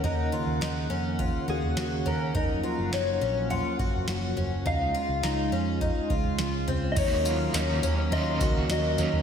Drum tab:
CC |----------------|----------------|----------------|x---------------|
TB |----------------|----------------|----------------|x-x-x-x---x-x-x-|
SD |----o-------o---|----o-------o---|----o-------o---|----o-------o---|
FT |o-------o--o--o-|o-------o--o--o-|o-------o--o--o-|o-----o-o-----oo|
BD |--------o-------|o---------o-----|--------o-o-----|o---------o-----|